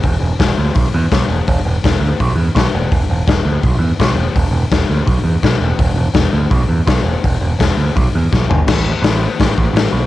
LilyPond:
<<
  \new Staff \with { instrumentName = "Picked electric bass" } { \clef bass \time 4/4 \key c \lydian \tempo 4 = 167 e,,8 e,,8 e,,8 d,8 b,,8 e,8 b,,8 e,,8 | e,,8 e,,8 e,,8 d,8 b,,8 e,8 b,,8 e,,8 | e,,8 e,,8 e,,8 d,8 b,,8 e,8 b,,8 e,,8 | e,,8 e,,8 e,,8 d,8 b,,8 e,8 b,,8 e,,8 |
e,,8 e,,8 e,,8 d,8 b,,8 e,8 b,,8 e,,8 | e,,8 e,,8 e,,8 d,8 b,,8 e,8 b,,8 g,,8 | a,,4 a,,4 a,,8 a,,8 a,,8 b,,8 | }
  \new DrumStaff \with { instrumentName = "Drums" } \drummode { \time 4/4 <hho bd>4 <hho bd sn>4 <hho bd>4 <hho bd sn>4 | <hho bd>4 <hho bd sn>4 <hho bd>4 <hho bd sn>4 | <hho bd>4 <hho bd sn>4 <hho bd>4 <hho bd sn>4 | <hho bd>4 <hho bd sn>4 <hho bd>4 <hho bd sn>4 |
<hho bd>4 <hho bd sn>4 <hho bd>4 <hho bd sn>4 | <hho bd>4 <hho bd sn>4 <hho bd>4 <bd sn>8 tomfh8 | <cymc bd sn>4 <hho sn>4 <hho bd sn>8 bd8 <hho sn>4 | }
>>